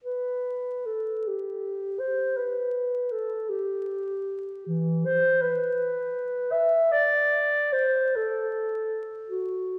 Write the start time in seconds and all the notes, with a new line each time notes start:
0.04 B4
0.86 A4
1.28 G4
2.00 C5
2.37 B4
3.11 A4
3.49 G4
4.67 E3
5.05 C5
5.42 B4
6.52 E5
6.92 D5
7.73 C5
8.16 A4
9.29 F#4